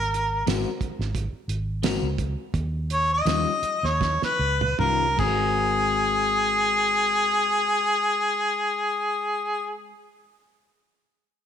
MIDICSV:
0, 0, Header, 1, 6, 480
1, 0, Start_track
1, 0, Tempo, 678733
1, 1296, Tempo, 725514
1, 1762, Time_signature, 4, 2, 24, 8
1, 2736, Tempo, 795756
1, 3696, Tempo, 832178
1, 7073, End_track
2, 0, Start_track
2, 0, Title_t, "Harmonica"
2, 0, Program_c, 0, 22
2, 0, Note_on_c, 0, 70, 89
2, 310, Note_off_c, 0, 70, 0
2, 2023, Note_on_c, 0, 73, 96
2, 2136, Note_off_c, 0, 73, 0
2, 2156, Note_on_c, 0, 75, 98
2, 2638, Note_on_c, 0, 73, 76
2, 2648, Note_off_c, 0, 75, 0
2, 2864, Note_off_c, 0, 73, 0
2, 2874, Note_on_c, 0, 71, 82
2, 3201, Note_off_c, 0, 71, 0
2, 3210, Note_on_c, 0, 70, 84
2, 3443, Note_off_c, 0, 70, 0
2, 3449, Note_on_c, 0, 68, 103
2, 6056, Note_off_c, 0, 68, 0
2, 7073, End_track
3, 0, Start_track
3, 0, Title_t, "Clean electric guitar"
3, 0, Program_c, 1, 27
3, 328, Note_on_c, 1, 56, 99
3, 335, Note_on_c, 1, 60, 84
3, 340, Note_on_c, 1, 66, 100
3, 348, Note_on_c, 1, 70, 102
3, 483, Note_off_c, 1, 56, 0
3, 486, Note_off_c, 1, 60, 0
3, 489, Note_off_c, 1, 66, 0
3, 492, Note_off_c, 1, 70, 0
3, 1291, Note_on_c, 1, 56, 79
3, 1297, Note_on_c, 1, 60, 76
3, 1301, Note_on_c, 1, 66, 84
3, 1306, Note_on_c, 1, 70, 85
3, 1442, Note_off_c, 1, 56, 0
3, 1445, Note_off_c, 1, 60, 0
3, 1447, Note_off_c, 1, 66, 0
3, 1450, Note_off_c, 1, 70, 0
3, 2236, Note_on_c, 1, 51, 83
3, 2241, Note_on_c, 1, 55, 76
3, 2245, Note_on_c, 1, 61, 79
3, 2250, Note_on_c, 1, 65, 77
3, 2396, Note_off_c, 1, 51, 0
3, 2398, Note_off_c, 1, 55, 0
3, 2400, Note_off_c, 1, 61, 0
3, 2403, Note_off_c, 1, 65, 0
3, 3203, Note_on_c, 1, 51, 80
3, 3209, Note_on_c, 1, 55, 69
3, 3214, Note_on_c, 1, 61, 71
3, 3217, Note_on_c, 1, 65, 87
3, 3360, Note_off_c, 1, 51, 0
3, 3362, Note_off_c, 1, 55, 0
3, 3365, Note_off_c, 1, 61, 0
3, 3366, Note_off_c, 1, 65, 0
3, 3433, Note_on_c, 1, 56, 68
3, 3456, Note_on_c, 1, 60, 74
3, 3477, Note_on_c, 1, 66, 78
3, 3495, Note_on_c, 1, 70, 87
3, 6185, Note_off_c, 1, 56, 0
3, 6207, Note_off_c, 1, 60, 0
3, 6227, Note_off_c, 1, 66, 0
3, 6243, Note_off_c, 1, 70, 0
3, 7073, End_track
4, 0, Start_track
4, 0, Title_t, "Fingered electric bass"
4, 0, Program_c, 2, 33
4, 0, Note_on_c, 2, 32, 88
4, 305, Note_off_c, 2, 32, 0
4, 333, Note_on_c, 2, 32, 78
4, 451, Note_off_c, 2, 32, 0
4, 700, Note_on_c, 2, 32, 87
4, 919, Note_off_c, 2, 32, 0
4, 1046, Note_on_c, 2, 32, 72
4, 1395, Note_off_c, 2, 32, 0
4, 1421, Note_on_c, 2, 37, 81
4, 1633, Note_off_c, 2, 37, 0
4, 1763, Note_on_c, 2, 39, 95
4, 2215, Note_off_c, 2, 39, 0
4, 2237, Note_on_c, 2, 39, 68
4, 2361, Note_off_c, 2, 39, 0
4, 2619, Note_on_c, 2, 39, 83
4, 2839, Note_off_c, 2, 39, 0
4, 2967, Note_on_c, 2, 37, 82
4, 3181, Note_off_c, 2, 37, 0
4, 3203, Note_on_c, 2, 36, 64
4, 3423, Note_off_c, 2, 36, 0
4, 3448, Note_on_c, 2, 32, 87
4, 6176, Note_off_c, 2, 32, 0
4, 7073, End_track
5, 0, Start_track
5, 0, Title_t, "Muted fingered electric bass strokes"
5, 574, Note_on_c, 9, 29, 33
5, 645, Note_off_c, 9, 29, 0
5, 937, Note_on_c, 9, 29, 36
5, 1008, Note_off_c, 9, 29, 0
5, 2481, Note_on_c, 9, 29, 37
5, 2547, Note_off_c, 9, 29, 0
5, 2865, Note_on_c, 9, 29, 38
5, 2925, Note_off_c, 9, 29, 0
5, 7073, End_track
6, 0, Start_track
6, 0, Title_t, "Drums"
6, 100, Note_on_c, 9, 42, 65
6, 171, Note_off_c, 9, 42, 0
6, 335, Note_on_c, 9, 42, 73
6, 335, Note_on_c, 9, 54, 92
6, 340, Note_on_c, 9, 38, 94
6, 405, Note_off_c, 9, 42, 0
6, 405, Note_off_c, 9, 54, 0
6, 411, Note_off_c, 9, 38, 0
6, 571, Note_on_c, 9, 36, 81
6, 576, Note_on_c, 9, 42, 55
6, 642, Note_off_c, 9, 36, 0
6, 647, Note_off_c, 9, 42, 0
6, 712, Note_on_c, 9, 38, 32
6, 783, Note_off_c, 9, 38, 0
6, 811, Note_on_c, 9, 36, 77
6, 815, Note_on_c, 9, 42, 87
6, 882, Note_off_c, 9, 36, 0
6, 886, Note_off_c, 9, 42, 0
6, 1056, Note_on_c, 9, 42, 63
6, 1126, Note_off_c, 9, 42, 0
6, 1297, Note_on_c, 9, 42, 81
6, 1297, Note_on_c, 9, 54, 110
6, 1302, Note_on_c, 9, 38, 99
6, 1363, Note_off_c, 9, 42, 0
6, 1363, Note_off_c, 9, 54, 0
6, 1368, Note_off_c, 9, 38, 0
6, 1529, Note_on_c, 9, 36, 90
6, 1532, Note_on_c, 9, 42, 67
6, 1595, Note_off_c, 9, 36, 0
6, 1598, Note_off_c, 9, 42, 0
6, 1763, Note_on_c, 9, 36, 110
6, 1765, Note_on_c, 9, 42, 78
6, 1829, Note_off_c, 9, 36, 0
6, 1831, Note_off_c, 9, 42, 0
6, 2003, Note_on_c, 9, 42, 66
6, 2069, Note_off_c, 9, 42, 0
6, 2243, Note_on_c, 9, 42, 69
6, 2243, Note_on_c, 9, 54, 106
6, 2248, Note_on_c, 9, 38, 101
6, 2309, Note_off_c, 9, 42, 0
6, 2309, Note_off_c, 9, 54, 0
6, 2314, Note_off_c, 9, 38, 0
6, 2485, Note_on_c, 9, 42, 58
6, 2551, Note_off_c, 9, 42, 0
6, 2630, Note_on_c, 9, 38, 32
6, 2696, Note_off_c, 9, 38, 0
6, 2735, Note_on_c, 9, 36, 87
6, 2740, Note_on_c, 9, 38, 64
6, 2796, Note_off_c, 9, 36, 0
6, 2801, Note_off_c, 9, 38, 0
6, 2866, Note_on_c, 9, 38, 55
6, 2926, Note_off_c, 9, 38, 0
6, 3100, Note_on_c, 9, 48, 68
6, 3160, Note_off_c, 9, 48, 0
6, 3205, Note_on_c, 9, 47, 84
6, 3266, Note_off_c, 9, 47, 0
6, 3446, Note_on_c, 9, 49, 81
6, 3447, Note_on_c, 9, 36, 105
6, 3506, Note_off_c, 9, 49, 0
6, 3507, Note_off_c, 9, 36, 0
6, 7073, End_track
0, 0, End_of_file